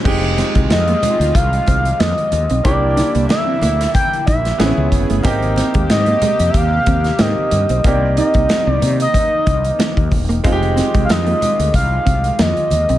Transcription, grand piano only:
X:1
M:4/4
L:1/8
Q:"Swing 16ths" 1/4=92
K:Fdor
V:1 name="Grand piano"
[A,CEG]8 | [B,D=EG]6 [=B,C^CE^G]2 | [B,CEG]6 [B,CEG]2 | [B,CEG]8 |
[A,CEFG]8 |]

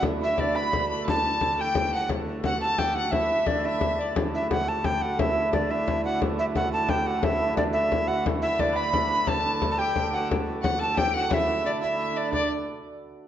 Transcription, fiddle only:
X:1
M:6/8
L:1/8
Q:3/8=117
K:D
V:1 name="Fiddle"
z e d b2 b | a3 g2 f | z2 f a2 f | e3 e2 d |
z6 | z6 | z6 | z6 |
z e d b2 b | a3 g g2 | z2 f a g f | e2 d e e d |
d z4 z |]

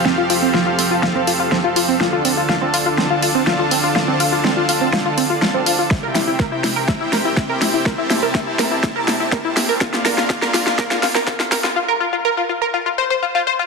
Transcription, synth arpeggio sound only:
X:1
M:4/4
L:1/16
Q:1/4=123
K:Cmix
V:1 name="Synth arpeggio sound"
C F F C F F C F F C F F C F F C | F F C F F C F F C F F C F F C F | F C F F C F F C F F C F F C F F | E B E E B E E B E E B E E B E E |
B E E B E E B E E B E E B E E B | F F B F F B F F B F F B F F B F | F B F F B F F B F F c c F F c F |]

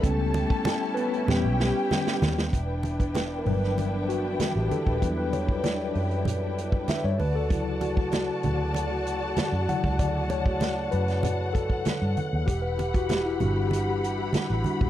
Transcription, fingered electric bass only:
X:1
M:4/4
L:1/16
Q:1/4=96
K:Edor
V:1 name="Fingered electric bass" clef=bass
C,,3 z4 z E,, B,,,2 z3 ^D,,2 | E,,,6 G,,,6 z A,,, z ^D,,, | E,,6 F,,6 z G,, D,,2- | D,,6 D,,6 z F,, z C,, |
D,,6 F,,6 z G,, z ^D,, | E,,,6 G,,,6 z A,,, z ^D,,, |]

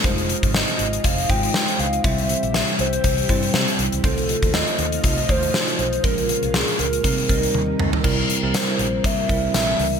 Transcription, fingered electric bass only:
X:1
M:4/4
L:1/16
Q:"Swing 16ths" 1/4=120
K:Cphr
V:1 name="Fingered electric bass" clef=bass
F,,,3 A,,,2 z A,,,2 F,,,2 A,,,2 z2 D,,2 | C,,3 B,,,2 z C,,2 C,,2 G,,2 C, z C,, D,, | C,,3 E,,2 z E,,2 C,,2 E,,2 z2 =B,,,2 | B,,,3 C,,2 z D,,2 C,2 C,,2 E,,2 D,, z |
C,,2 z C,, z2 B,,,2 z2 C,,2 B,,,2 D,,2 |]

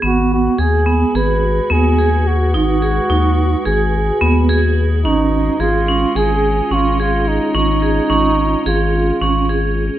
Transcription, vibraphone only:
X:1
M:9/8
L:1/8
Q:3/8=72
K:G#dor
V:1 name="Vibraphone"
B,2 G B, G2 B, G2 | D G D2 G2 B, G2 | C2 G C G2 C G2 | C G C2 G2 C G2 |]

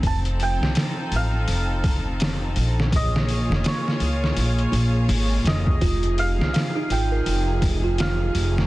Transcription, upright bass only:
X:1
M:4/4
L:1/16
Q:"Swing 16ths" 1/4=83
K:Fm
V:1 name="Upright bass" clef=bass
F,,,3 C,, z2 =A,,,2 F,,,6 B,,,2- | B,,,3 F,,, z2 D,,2 B,,,2 B,,,2 A,,,2 F,,,2 | F,,,3 C,, z2 A,,,2 F,,,6 F,,,2 |]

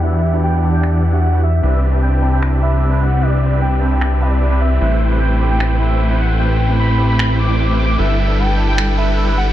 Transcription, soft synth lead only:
X:1
M:4/4
L:1/16
Q:1/4=151
K:Clyd
V:1 name="Soft synth lead"
e3 z g2 z g2 z f3 z e2 | e3 z g2 z g2 z e3 z f2 | d3 z g2 z g3 d3 z e2 | e3 z g2 z g2 z e3 z f2 |
g3 z b2 z b2 z d'3 z d'2 | e4 g2 z g2 z e3 z f2 |]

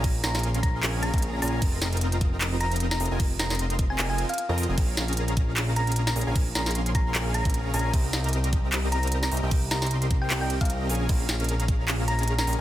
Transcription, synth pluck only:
X:1
M:4/4
L:1/16
Q:"Swing 16ths" 1/4=152
K:Bbdor
V:1 name="Synth pluck"
z2 b2 z2 b3 z b2 z2 b2 | z8 z2 b3 b2 z | z2 b2 z3 a2 a2 f3 z2 | z8 z2 b3 b2 z |
z2 b2 z2 b3 z b2 z2 b2 | z8 z2 b3 b2 z | z2 b2 z3 g2 g2 f3 z2 | z8 z2 b3 b2 z |]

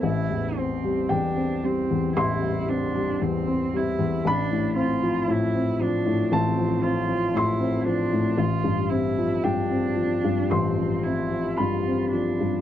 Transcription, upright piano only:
X:1
M:4/4
L:1/16
Q:1/4=57
K:Am
V:1 name="Upright piano"
z4 g4 c'8 | b8 a4 c'4 | z4 g4 c'4 b4 |]
V:2 name="Upright piano" clef=bass
A,,, E,, C G, E,, C G, E,, A,,, G, C G, E,, C G, E,, | A,,, A,, C F, A,, C F, A,, A,,, F, C F, A,, C F, A,, | A,,, G,, C F, G,, C F, G,, A,,, F, C F, G,, C F, G,, |]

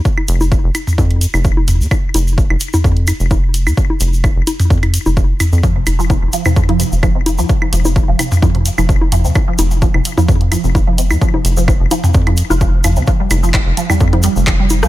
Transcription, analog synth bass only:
X:1
M:4/4
L:1/16
Q:"Swing 16ths" 1/4=129
K:Cm
V:1 name="Analog synth bass" clef=bass
z2 F,,,2 z F,,, z2 F,,2 z F,,,4 F,, | z2 F,,,2 z F,,, z2 F,,2 z F,,,4 F,, | z2 F,,,2 z F,,, z2 F,,2 z F,,,2 z2 F,,- | F,, z F,,,2 z F,,, z2 F,,2 z F,,,4 F,, |
z2 F,,,2 z F,,, z2 F,,2 z F,,,4 F,, | z2 F,,,2 z F,,, z2 F,,2 z F,,,4 F,, | z2 F,,,2 z F,,, z2 F,,2 z F,,,4 F,, | z2 F,,,2 z F,,, z2 F,,2 z F,,,4 F,, |]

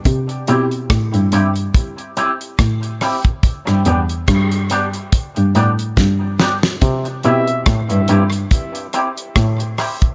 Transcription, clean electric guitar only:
X:1
M:4/4
L:1/8
Q:"Swing 16ths" 1/4=71
K:C
V:1 name="Clean electric guitar"
z [CEG] z [CEG] z [CEG] z [CEG] | z [B,DG] z [B,DG] z [B,DG] z [B,DG] | z [CEG] z [CEG] z [CEG] z [CEG] |]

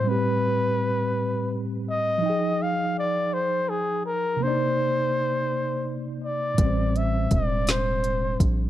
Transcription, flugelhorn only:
X:1
M:6/8
L:1/8
Q:3/8=55
K:Am
V:1 name="Flugelhorn"
B4 z ^d- | ^d f =d c _A _B | c4 z d- | d e d c2 z |]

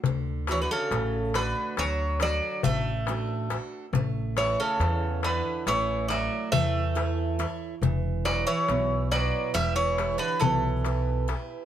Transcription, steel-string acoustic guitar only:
X:1
M:9/8
L:1/8
Q:3/8=46
K:D
V:1 name="Steel-string acoustic guitar"
D, [FAd] A, [DFA] D, [DFA] A, [DFA] [DFA] | A, [EAc] E, [EAc] A, [EAe] E, [EAc] [EAc] | E, [EGB] B,, [EBg] E, [EGB] B,, [EGB] [EGB] |]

